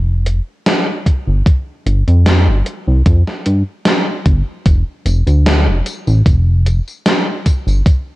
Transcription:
Already playing: F1
0.26 closed hi-hat
0.66 snare, closed hi-hat
1.06 kick, closed hi-hat
1.27 G1
1.46 kick, closed hi-hat
1.86 G1, closed hi-hat
2.08 F2, closed hi-hat
2.26 snare, closed hi-hat
2.47 G1
2.66 closed hi-hat
2.87 C2
3.06 F2, kick, closed hi-hat
3.27 snare
3.46 G2, closed hi-hat
3.85 snare, closed hi-hat
4.26 G1, kick, closed hi-hat
4.66 F1, kick, closed hi-hat, tambourine
5.06 F1, closed hi-hat, tambourine
5.27 D2, closed hi-hat, tambourine
5.46 snare, closed hi-hat, tambourine
5.67 F1
5.86 closed hi-hat, tambourine
6.07 A1, tambourine
6.26 F1, kick, closed hi-hat, tambourine
6.66 closed hi-hat, tambourine
6.87 tambourine
7.06 snare, closed hi-hat, tambourine
7.46 kick, closed hi-hat, tambourine
7.67 G1, tambourine
7.86 kick, closed hi-hat, tambourine

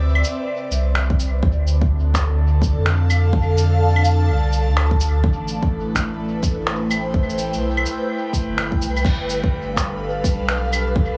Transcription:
Already playing: D2 C3 C4 B4 D5 E5
0.15 claves
0.24 shaker
0.70 C2, shaker
0.95 finger snap, claves
1.10 kick
1.20 shaker
1.43 D2 D3, kick
1.62 D4
1.67 shaker
1.81 kick
2.03 A4
2.14 finger snap, kick, shaker
2.62 kick, shaker
2.76 F2
2.86 F5, finger snap
3.09 A5, claves, shaker
3.33 kick
3.58 shaker
3.96 claves
4.04 shaker
4.29 C2
4.52 shaker
4.68 D2
4.77 finger snap, claves
4.91 kick
5.00 shaker
5.24 A1 A3, kick
5.46 B4, shaker
5.63 E4, kick
5.95 A1, finger snap, kick, shaker
6.43 kick, shaker
6.64 C5 G5, finger snap
6.91 claves, shaker
7.14 A1, kick
7.30 shaker
7.38 shaker
7.53 B1, shaker
7.77 claves
7.86 shaker
8.33 kick, shaker
8.48 G1
8.58 finger snap, claves
8.72 kick
8.81 C2, shaker
8.97 claves, shaker
9.05 G1 G3 B4, kick, crash
9.29 shaker
9.44 D4, kick
9.51 F5
9.71 A4
9.76 finger snap, kick, shaker
10.24 kick, shaker
10.39 B1
10.49 finger snap
10.73 claves, shaker
10.96 kick

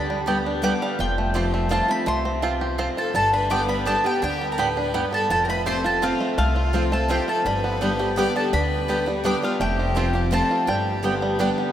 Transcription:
Already playing: D2 D3 D4 B5
0.10 G3
0.26 D3 G3 B3 G4 D5 G5
0.46 D4
0.62 D3 G3 B3 G4 D5 G5 D6
0.82 G3 F5
0.99 F1 F2 F4 G5
1.18 A3
1.34 F3 A3 C4 F4 G4 C5 A5
1.54 A3
1.69 F3 A3 C4 F4 C5 A5
1.88 A3 C4 F4 B5
2.06 C2 C3 A3 C6
2.25 C4
2.42 E2 C4 F4 C5 A5
2.61 G4
2.78 F2 C4 F4 C5 A5
2.97 F4 A4 A5
3.14 G1 G2 G3 A4 A5
3.33 D4 B4 B5
3.50 D3 G3 B3 G4 D5 G5 D6
3.69 G3 B4 B5
3.85 D3 G3 B3 D4 G4 A4 D5 G5 A5
4.04 B3 G4 G5
4.22 D2 D3 D4 G4 G5
4.41 G3
4.52 A#4 A#5
4.58 A2 B3 G4 B4 D5 G5 B5
4.77 D4
4.94 G2 B3 G4 D5 G5
5.13 G3 A4 A5
5.30 F1 F2 F4 A4 A5
5.44 A#4 A#5
5.49 A3 B4 B5
5.66 F3 A3 C4 F4 G4 C5 A5 C6
5.84 C4 F4 A4 A5
6.02 F3 A3 C4 F4 C5 F5 A5
6.20 A3
6.38 C2 C3 A3 F4 F5
6.56 F4
6.73 F3 A3 C4 F4 C5 A5
6.92 A3 C4 F4 A4 A5
7.08 F3 A3 C4 F4 G4 C5 G5 A5
7.28 C4 A4 A5
7.45 G1 G2 G3 B4 B5
7.64 B3
7.81 D3 G3 B3 D4 G4 D5 G5
7.99 B3 G4
8.16 D3 G3 B3 G4 D5 G5 D6
8.36 D4 A4 A5
8.53 D2 D3 D4 B4 B5
8.88 D3 G3 B3 G4 D5 G5
9.06 G3 B3 G4
9.24 D3 G3 B3 D4 G4 D5 G5 D6
9.42 G3 B3 F4 G4 F5
9.60 F1 F2 A3 G4 G5
9.79 C4
9.95 F3 A3 C4 F4 C5 A5
10.13 C4 F4 G4
10.31 F3 A3 C4 F4 A4 C5 A5
10.51 F4
10.67 G1 G2 G3 G4 G5
11.03 D3 G3 B3 G4 D5 G5
11.22 G3
11.39 D3 G3 B3 D4 G4 D5 G5
11.58 B3

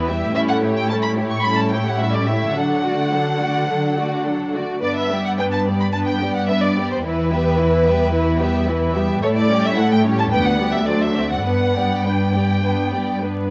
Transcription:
Already playing: E2
0.09 G3 E4 G4 E5
0.35 A2 G3 C#4 E4 A4 E5
0.49 F#5
0.62 A3 E4 G4 C#5
0.77 G5
0.89 G3 C#4 E4 A4 A5
1.03 B5
1.16 A3 E4 G4 C#5
1.31 C#6
1.44 G3 C#4 E4 A4 B5
1.58 A5
1.71 A3 E4 G4 C#5 G5
1.86 F#5
1.99 G3 C#4 E4 A4 E5
2.13 D5
2.26 A3 E4 G4 C#5 E5
2.54 D3 F#3 D4 A4 F#5
2.84 A3 F#4 D5
3.12 F#3 D4 A4
3.40 A3 F#4 D5
3.68 F#3 D4 A4
3.97 A3 F#4 D5
4.25 F#3 D4 A4
4.53 A3 F#4 D5
4.82 G2 B3 D4 B4 D5
4.97 E5
5.10 G3 B3 G4 D5
5.25 F#5
5.38 B3 D4 B4 G5
5.52 A5
5.67 G3 B3 G4 D5
5.81 B5
5.93 B3 D4 B4 A5
6.07 G5
6.22 G3 B3 G4 D5
6.35 F#5
6.48 B3 D4 B4 E5
6.63 D5
6.76 G3 B3 G4 D5
6.91 C5
7.04 E2 E3 E4 B4
7.32 G3 B3 G4 E5
7.58 E3 E4 B4
7.86 G3 B3 G4 E5
8.13 E3 E4 B4
8.40 G3 B3 G4 E5
8.67 E3 E4 B4
8.95 G3 B3 G4 E5
9.22 A2 A3 E4 A4 C#5
9.36 D5
9.49 G3 C#4 G4 C#5
9.65 E5
9.77 A3 E4 A4 F#5
9.92 G5
10.04 G3 C#4 G4 C#5
10.20 A5
10.31 D2 B3 D4 B4 G5
10.46 F#5
10.59 G3 B3 G4 D5
10.74 E5
10.87 F#3 D4 A4 C5 D5
11.02 E5
11.15 A3 C4 F#4 D5
11.32 F#5
11.44 G2 B3 D4 B4 F#5
11.75 G3 B3 G4 D5
12.04 B3 D4 B4 G5
12.34 G3 B3 G4 D5
12.63 B3 D4 B4
12.92 G3 B3 G4 D5
13.21 B3 D4 B4

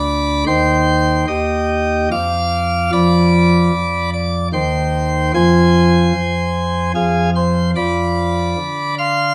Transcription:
Already playing: D2 D3 D5 B5 D6
0.47 D#2 D#3 C5 G5 C6
1.27 D#2 G4 D#5 G5
2.11 F2 F3 F5 D6 F6
2.92 F2 F3 D5 B5 D6
3.73 F2
4.13 D5 D6
4.53 D#2 D#3 C5 G5 C6
5.34 F2 F3 C5 G#5 C6
6.15 F2
6.95 F2 F3 G#4 F5 G#5
7.36 C5 C6
7.76 F2 F3 D5 B5 D6
8.58 D3
8.98 F5 C6 F6

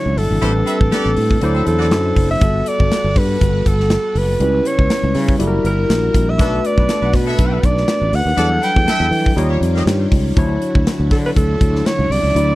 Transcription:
Already playing: D3 F#3 D4 E4 F#4 C#5 E5
0.06 C#2
0.17 G1 A4, open hi-hat
0.31 G#1
0.41 A1 G3 A3 C4 D4 E4 G4 B4 C5, closed hi-hat
0.66 C4 B4 E5, closed hi-hat
0.81 A1, kick
0.92 B3 G4 D5, snare, closed hi-hat
1.06 A1
1.17 A2, open hi-hat
1.31 kick
1.41 D2 D3 F#3 A3 C4 D4 E4 F#4 C5 D5, closed hi-hat
1.55 C4 A4 E5
1.67 E2 A4, closed hi-hat
1.79 A3 F#4 D5, snare
1.91 F#2, snare, closed hi-hat
2.16 F#1, kick, open hi-hat
2.31 E5
2.40 G1 G3 B3 F#4 A4 B4, kick, closed hi-hat
2.66 D5, closed hi-hat
2.80 G1, kick
2.92 snare, closed hi-hat
3.04 G1
3.16 G2 B4, kick, open hi-hat
3.41 G1, kick, closed hi-hat
3.66 G1 A4, kick, closed hi-hat
3.80 snare
3.90 snare, closed hi-hat
4.15 F#1 B4, open hi-hat
4.40 C#2 C#3 G3 B3 C#4 E4 B4, closed hi-hat
4.65 C#5, closed hi-hat
4.79 C#2, kick
4.90 snare, closed hi-hat
5.03 C#2
5.15 C#3, snare, open hi-hat
5.29 kick
5.38 F#1 G3 E4 F#4 A4 A#4, closed hi-hat
5.47 A#4
5.64 G1 A#4, closed hi-hat
5.90 A#1, snare, closed hi-hat
6.14 A#1, kick, closed hi-hat
6.30 E5
6.38 B1 F#3 A3 B3 D4 F#4 A4 B4, kick, closed hi-hat
6.65 D5, closed hi-hat
6.78 B1 F#3 D4 B4, kick
6.88 B3 A4 D5, snare, closed hi-hat
7.02 B1 D4 B4 F#5
7.13 B2 B4, kick, snare, open hi-hat
7.26 B3 A4 E5
7.39 B1, kick, closed hi-hat
7.63 B1 D5, kick, closed hi-hat
7.77 snare
7.88 snare, closed hi-hat
8.01 A1
8.13 D2 F#5, open hi-hat
8.26 D#2
8.36 E2 E3 F#3 G3 B3 D4 E4 A4 D5 G5, closed hi-hat
8.62 D4 B4 F#5 G5, closed hi-hat
8.76 E2, kick
8.87 B3 A4 E5, snare, closed hi-hat
9.00 E2
9.11 E3, open hi-hat
9.26 kick
9.36 D#2 D#3 G3 A#3 C#4 D#4 F4 G4 C#5 D#5, closed hi-hat
9.49 A#3 G4 C#5
9.61 F2, closed hi-hat
9.75 A#3 G4 D#5, snare
9.86 G2, snare, closed hi-hat
10.12 C#2, kick, open hi-hat
10.36 D2 D3 F#3 D4 E4 F#4 C#5, kick, closed hi-hat
10.62 closed hi-hat
10.75 D2, kick
10.87 snare, closed hi-hat
11.00 D2
11.11 D3 A4, kick, snare, open hi-hat
11.26 B4
11.36 D2 A4, kick, closed hi-hat
11.61 D2, kick, closed hi-hat
11.75 snare
11.86 C#5, snare, closed hi-hat
11.99 C#2
12.10 C2 D5, open hi-hat
12.23 C#2
12.34 D2 F#3 D4 E4 D5, closed hi-hat

